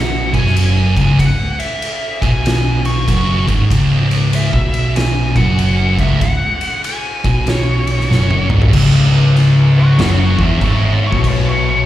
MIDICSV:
0, 0, Header, 1, 5, 480
1, 0, Start_track
1, 0, Key_signature, 4, "minor"
1, 0, Tempo, 627615
1, 916, Time_signature, 4, 2, 24, 8
1, 9069, End_track
2, 0, Start_track
2, 0, Title_t, "Lead electric guitar"
2, 0, Program_c, 0, 29
2, 0, Note_on_c, 0, 78, 96
2, 240, Note_off_c, 0, 78, 0
2, 259, Note_on_c, 0, 80, 84
2, 737, Note_off_c, 0, 80, 0
2, 746, Note_on_c, 0, 80, 95
2, 906, Note_off_c, 0, 80, 0
2, 919, Note_on_c, 0, 78, 87
2, 1216, Note_on_c, 0, 76, 84
2, 1232, Note_off_c, 0, 78, 0
2, 1668, Note_off_c, 0, 76, 0
2, 1697, Note_on_c, 0, 80, 96
2, 2185, Note_on_c, 0, 85, 95
2, 2193, Note_off_c, 0, 80, 0
2, 2633, Note_off_c, 0, 85, 0
2, 3328, Note_on_c, 0, 76, 85
2, 3772, Note_off_c, 0, 76, 0
2, 3794, Note_on_c, 0, 80, 106
2, 4099, Note_off_c, 0, 80, 0
2, 4103, Note_on_c, 0, 78, 92
2, 4552, Note_off_c, 0, 78, 0
2, 4590, Note_on_c, 0, 76, 94
2, 4748, Note_on_c, 0, 78, 100
2, 4766, Note_off_c, 0, 76, 0
2, 5203, Note_off_c, 0, 78, 0
2, 5239, Note_on_c, 0, 80, 98
2, 5727, Note_on_c, 0, 73, 70
2, 5733, Note_off_c, 0, 80, 0
2, 6478, Note_off_c, 0, 73, 0
2, 7482, Note_on_c, 0, 73, 97
2, 7492, Note_on_c, 0, 78, 112
2, 7641, Note_off_c, 0, 73, 0
2, 7641, Note_off_c, 0, 78, 0
2, 7658, Note_on_c, 0, 73, 80
2, 7660, Note_on_c, 0, 78, 83
2, 7796, Note_off_c, 0, 73, 0
2, 7803, Note_off_c, 0, 78, 0
2, 7805, Note_on_c, 0, 73, 75
2, 7814, Note_on_c, 0, 78, 84
2, 7951, Note_off_c, 0, 73, 0
2, 7962, Note_off_c, 0, 78, 0
2, 7969, Note_on_c, 0, 73, 79
2, 7977, Note_on_c, 0, 76, 90
2, 8113, Note_off_c, 0, 73, 0
2, 8123, Note_off_c, 0, 76, 0
2, 8136, Note_on_c, 0, 73, 78
2, 8146, Note_on_c, 0, 76, 88
2, 8277, Note_off_c, 0, 73, 0
2, 8287, Note_off_c, 0, 76, 0
2, 8296, Note_on_c, 0, 73, 70
2, 8302, Note_on_c, 0, 76, 67
2, 8437, Note_off_c, 0, 73, 0
2, 8443, Note_off_c, 0, 76, 0
2, 8456, Note_on_c, 0, 64, 73
2, 8463, Note_on_c, 0, 73, 85
2, 8596, Note_off_c, 0, 64, 0
2, 8606, Note_off_c, 0, 73, 0
2, 8623, Note_on_c, 0, 64, 84
2, 8629, Note_on_c, 0, 73, 100
2, 8760, Note_off_c, 0, 64, 0
2, 8769, Note_off_c, 0, 73, 0
2, 8779, Note_on_c, 0, 64, 81
2, 8784, Note_on_c, 0, 73, 98
2, 8918, Note_off_c, 0, 64, 0
2, 8926, Note_off_c, 0, 73, 0
2, 8947, Note_on_c, 0, 73, 90
2, 9069, Note_off_c, 0, 73, 0
2, 9069, End_track
3, 0, Start_track
3, 0, Title_t, "Distorted electric guitar"
3, 0, Program_c, 1, 30
3, 0, Note_on_c, 1, 47, 94
3, 250, Note_off_c, 1, 47, 0
3, 253, Note_on_c, 1, 42, 93
3, 728, Note_off_c, 1, 42, 0
3, 737, Note_on_c, 1, 37, 100
3, 905, Note_off_c, 1, 37, 0
3, 915, Note_on_c, 1, 37, 66
3, 1068, Note_off_c, 1, 37, 0
3, 1703, Note_on_c, 1, 47, 91
3, 2351, Note_off_c, 1, 47, 0
3, 2356, Note_on_c, 1, 42, 97
3, 2652, Note_off_c, 1, 42, 0
3, 2663, Note_on_c, 1, 44, 94
3, 2831, Note_off_c, 1, 44, 0
3, 2836, Note_on_c, 1, 37, 98
3, 3460, Note_off_c, 1, 37, 0
3, 3473, Note_on_c, 1, 47, 112
3, 4095, Note_off_c, 1, 47, 0
3, 4101, Note_on_c, 1, 42, 97
3, 4573, Note_off_c, 1, 42, 0
3, 4581, Note_on_c, 1, 37, 99
3, 4749, Note_off_c, 1, 37, 0
3, 4759, Note_on_c, 1, 37, 65
3, 4911, Note_off_c, 1, 37, 0
3, 5545, Note_on_c, 1, 47, 88
3, 6194, Note_off_c, 1, 47, 0
3, 6200, Note_on_c, 1, 42, 99
3, 6496, Note_off_c, 1, 42, 0
3, 6506, Note_on_c, 1, 44, 107
3, 6675, Note_off_c, 1, 44, 0
3, 6679, Note_on_c, 1, 37, 113
3, 7633, Note_off_c, 1, 37, 0
3, 7644, Note_on_c, 1, 42, 101
3, 7938, Note_off_c, 1, 42, 0
3, 7945, Note_on_c, 1, 40, 96
3, 8114, Note_off_c, 1, 40, 0
3, 8126, Note_on_c, 1, 44, 99
3, 8503, Note_off_c, 1, 44, 0
3, 8506, Note_on_c, 1, 47, 99
3, 9069, Note_off_c, 1, 47, 0
3, 9069, End_track
4, 0, Start_track
4, 0, Title_t, "Picked electric bass"
4, 0, Program_c, 2, 34
4, 0, Note_on_c, 2, 35, 92
4, 229, Note_off_c, 2, 35, 0
4, 259, Note_on_c, 2, 30, 85
4, 710, Note_off_c, 2, 30, 0
4, 738, Note_on_c, 2, 25, 98
4, 902, Note_off_c, 2, 25, 0
4, 912, Note_on_c, 2, 25, 79
4, 1056, Note_off_c, 2, 25, 0
4, 1698, Note_on_c, 2, 35, 100
4, 2324, Note_off_c, 2, 35, 0
4, 2353, Note_on_c, 2, 30, 90
4, 2638, Note_off_c, 2, 30, 0
4, 2660, Note_on_c, 2, 32, 96
4, 2823, Note_off_c, 2, 32, 0
4, 2833, Note_on_c, 2, 25, 95
4, 3437, Note_off_c, 2, 25, 0
4, 3467, Note_on_c, 2, 35, 103
4, 4071, Note_off_c, 2, 35, 0
4, 4099, Note_on_c, 2, 30, 91
4, 4551, Note_off_c, 2, 30, 0
4, 4579, Note_on_c, 2, 25, 87
4, 4743, Note_off_c, 2, 25, 0
4, 4751, Note_on_c, 2, 25, 82
4, 4896, Note_off_c, 2, 25, 0
4, 5541, Note_on_c, 2, 35, 97
4, 6167, Note_off_c, 2, 35, 0
4, 6197, Note_on_c, 2, 30, 94
4, 6482, Note_off_c, 2, 30, 0
4, 6500, Note_on_c, 2, 32, 85
4, 6665, Note_off_c, 2, 32, 0
4, 6676, Note_on_c, 2, 25, 99
4, 7607, Note_off_c, 2, 25, 0
4, 7639, Note_on_c, 2, 30, 90
4, 7923, Note_off_c, 2, 30, 0
4, 7941, Note_on_c, 2, 28, 87
4, 8105, Note_off_c, 2, 28, 0
4, 8116, Note_on_c, 2, 32, 96
4, 8482, Note_off_c, 2, 32, 0
4, 8510, Note_on_c, 2, 35, 93
4, 9046, Note_off_c, 2, 35, 0
4, 9069, End_track
5, 0, Start_track
5, 0, Title_t, "Drums"
5, 258, Note_on_c, 9, 36, 91
5, 259, Note_on_c, 9, 51, 60
5, 334, Note_off_c, 9, 36, 0
5, 336, Note_off_c, 9, 51, 0
5, 356, Note_on_c, 9, 38, 33
5, 432, Note_off_c, 9, 38, 0
5, 433, Note_on_c, 9, 51, 84
5, 510, Note_off_c, 9, 51, 0
5, 739, Note_on_c, 9, 36, 108
5, 742, Note_on_c, 9, 51, 65
5, 815, Note_off_c, 9, 36, 0
5, 819, Note_off_c, 9, 51, 0
5, 913, Note_on_c, 9, 36, 93
5, 915, Note_on_c, 9, 51, 97
5, 989, Note_off_c, 9, 36, 0
5, 991, Note_off_c, 9, 51, 0
5, 1221, Note_on_c, 9, 51, 73
5, 1298, Note_off_c, 9, 51, 0
5, 1394, Note_on_c, 9, 51, 92
5, 1470, Note_off_c, 9, 51, 0
5, 1699, Note_on_c, 9, 36, 101
5, 1703, Note_on_c, 9, 51, 67
5, 1775, Note_off_c, 9, 36, 0
5, 1779, Note_off_c, 9, 51, 0
5, 1879, Note_on_c, 9, 51, 89
5, 1888, Note_on_c, 9, 38, 110
5, 1956, Note_off_c, 9, 51, 0
5, 1965, Note_off_c, 9, 38, 0
5, 2180, Note_on_c, 9, 51, 63
5, 2257, Note_off_c, 9, 51, 0
5, 2354, Note_on_c, 9, 36, 102
5, 2357, Note_on_c, 9, 51, 102
5, 2430, Note_off_c, 9, 36, 0
5, 2433, Note_off_c, 9, 51, 0
5, 2659, Note_on_c, 9, 36, 98
5, 2664, Note_on_c, 9, 51, 72
5, 2735, Note_off_c, 9, 36, 0
5, 2740, Note_off_c, 9, 51, 0
5, 2834, Note_on_c, 9, 36, 103
5, 2839, Note_on_c, 9, 51, 106
5, 2910, Note_off_c, 9, 36, 0
5, 2916, Note_off_c, 9, 51, 0
5, 3144, Note_on_c, 9, 51, 68
5, 3220, Note_off_c, 9, 51, 0
5, 3312, Note_on_c, 9, 51, 90
5, 3389, Note_off_c, 9, 51, 0
5, 3466, Note_on_c, 9, 36, 103
5, 3543, Note_off_c, 9, 36, 0
5, 3623, Note_on_c, 9, 51, 61
5, 3699, Note_off_c, 9, 51, 0
5, 3794, Note_on_c, 9, 51, 90
5, 3803, Note_on_c, 9, 38, 116
5, 3870, Note_off_c, 9, 51, 0
5, 3879, Note_off_c, 9, 38, 0
5, 4097, Note_on_c, 9, 36, 105
5, 4099, Note_on_c, 9, 51, 61
5, 4174, Note_off_c, 9, 36, 0
5, 4175, Note_off_c, 9, 51, 0
5, 4273, Note_on_c, 9, 51, 81
5, 4349, Note_off_c, 9, 51, 0
5, 4578, Note_on_c, 9, 36, 101
5, 4581, Note_on_c, 9, 51, 63
5, 4655, Note_off_c, 9, 36, 0
5, 4657, Note_off_c, 9, 51, 0
5, 4752, Note_on_c, 9, 36, 101
5, 4753, Note_on_c, 9, 51, 94
5, 4828, Note_off_c, 9, 36, 0
5, 4829, Note_off_c, 9, 51, 0
5, 5055, Note_on_c, 9, 51, 68
5, 5131, Note_off_c, 9, 51, 0
5, 5233, Note_on_c, 9, 51, 89
5, 5309, Note_off_c, 9, 51, 0
5, 5540, Note_on_c, 9, 51, 65
5, 5541, Note_on_c, 9, 36, 102
5, 5617, Note_off_c, 9, 36, 0
5, 5617, Note_off_c, 9, 51, 0
5, 5711, Note_on_c, 9, 51, 87
5, 5720, Note_on_c, 9, 38, 108
5, 5788, Note_off_c, 9, 51, 0
5, 5797, Note_off_c, 9, 38, 0
5, 6021, Note_on_c, 9, 51, 62
5, 6098, Note_off_c, 9, 51, 0
5, 6121, Note_on_c, 9, 38, 33
5, 6197, Note_off_c, 9, 38, 0
5, 6207, Note_on_c, 9, 38, 59
5, 6283, Note_off_c, 9, 38, 0
5, 6352, Note_on_c, 9, 48, 65
5, 6428, Note_off_c, 9, 48, 0
5, 6500, Note_on_c, 9, 45, 93
5, 6576, Note_off_c, 9, 45, 0
5, 6591, Note_on_c, 9, 43, 83
5, 6667, Note_off_c, 9, 43, 0
5, 6678, Note_on_c, 9, 49, 127
5, 6678, Note_on_c, 9, 57, 69
5, 6679, Note_on_c, 9, 36, 122
5, 6754, Note_off_c, 9, 49, 0
5, 6754, Note_off_c, 9, 57, 0
5, 6755, Note_off_c, 9, 36, 0
5, 7162, Note_on_c, 9, 57, 58
5, 7172, Note_on_c, 9, 38, 31
5, 7239, Note_off_c, 9, 57, 0
5, 7248, Note_off_c, 9, 38, 0
5, 7638, Note_on_c, 9, 57, 61
5, 7647, Note_on_c, 9, 38, 114
5, 7714, Note_off_c, 9, 57, 0
5, 7724, Note_off_c, 9, 38, 0
5, 7944, Note_on_c, 9, 36, 107
5, 8020, Note_off_c, 9, 36, 0
5, 8117, Note_on_c, 9, 36, 103
5, 8119, Note_on_c, 9, 57, 60
5, 8193, Note_off_c, 9, 36, 0
5, 8195, Note_off_c, 9, 57, 0
5, 8508, Note_on_c, 9, 36, 98
5, 8585, Note_off_c, 9, 36, 0
5, 8597, Note_on_c, 9, 36, 106
5, 8599, Note_on_c, 9, 57, 68
5, 8673, Note_off_c, 9, 36, 0
5, 8675, Note_off_c, 9, 57, 0
5, 9069, End_track
0, 0, End_of_file